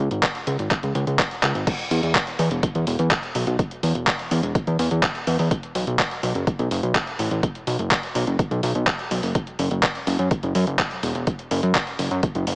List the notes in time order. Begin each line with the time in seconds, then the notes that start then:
0.11 G#1, closed hi-hat
0.23 kick, clap, closed hi-hat
0.35 closed hi-hat
0.47 C#2, closed hi-hat
0.59 G#1, closed hi-hat
0.71 kick, clap, closed hi-hat
0.83 C#2, closed hi-hat
0.95 C#2, closed hi-hat
1.07 C#2, closed hi-hat
1.19 kick, clap, closed hi-hat
1.31 closed hi-hat
1.43 C#2, clap, closed hi-hat
1.55 G#1, closed hi-hat
1.67 kick, closed hi-hat, crash
1.79 closed hi-hat
1.91 E2, open hi-hat
2.03 E2, closed hi-hat
2.15 kick, clap, closed hi-hat
2.27 closed hi-hat
2.39 E2, open hi-hat
2.51 E1, closed hi-hat
2.63 kick, closed hi-hat
2.75 E2, closed hi-hat
2.87 E1, open hi-hat
2.99 E2, closed hi-hat
3.11 kick, clap, closed hi-hat
3.23 closed hi-hat
3.35 B1, open hi-hat
3.47 B1, closed hi-hat
3.59 kick, closed hi-hat
3.71 closed hi-hat
3.83 E2, open hi-hat
3.95 E1, closed hi-hat
4.07 kick, clap, closed hi-hat
4.19 closed hi-hat
4.31 E2, open hi-hat
4.43 E1, closed hi-hat
4.55 kick, closed hi-hat
4.67 E2, closed hi-hat
4.79 E2, open hi-hat
4.91 E2, closed hi-hat
5.03 kick, clap, closed hi-hat
5.15 closed hi-hat
5.27 E2, open hi-hat
5.39 E2, open hi-hat
5.51 kick, closed hi-hat
5.63 closed hi-hat
5.75 B1, open hi-hat
5.87 B1, closed hi-hat
5.99 kick, clap, closed hi-hat
6.11 closed hi-hat
6.23 B1, open hi-hat
6.35 F#1, closed hi-hat
6.47 kick, closed hi-hat
6.59 B1, closed hi-hat
6.71 F#1, open hi-hat
6.83 B1, closed hi-hat
6.95 kick, clap, closed hi-hat
7.07 closed hi-hat
7.19 A1, open hi-hat
7.31 A1, closed hi-hat
7.43 kick, closed hi-hat
7.55 closed hi-hat
7.67 B1, open hi-hat
7.79 F#1, closed hi-hat
7.91 kick, clap, closed hi-hat
8.03 closed hi-hat
8.15 B1, open hi-hat
8.27 F#1, closed hi-hat
8.39 kick, closed hi-hat
8.51 B1, closed hi-hat
8.63 B1, open hi-hat
8.75 B1, closed hi-hat
8.87 kick, clap, closed hi-hat
8.99 closed hi-hat
9.11 B1, open hi-hat
9.23 F#1, open hi-hat
9.35 kick, closed hi-hat
9.47 closed hi-hat
9.59 F#1, open hi-hat
9.71 F#1, closed hi-hat
9.83 kick, clap, closed hi-hat
9.95 closed hi-hat
10.07 F#1, open hi-hat
10.19 F#2, closed hi-hat
10.31 kick, closed hi-hat
10.43 F#1, closed hi-hat
10.55 F#2, open hi-hat
10.67 F#1, closed hi-hat
10.79 kick, clap, closed hi-hat
10.91 closed hi-hat
11.03 E1, open hi-hat
11.15 E1, closed hi-hat
11.27 kick, closed hi-hat
11.39 closed hi-hat
11.51 F#1, open hi-hat
11.63 F#2, closed hi-hat
11.75 kick, clap, closed hi-hat
11.87 closed hi-hat
11.99 F#1, open hi-hat
12.11 F#2, closed hi-hat
12.23 kick, closed hi-hat
12.35 F#1, closed hi-hat
12.47 F#1, open hi-hat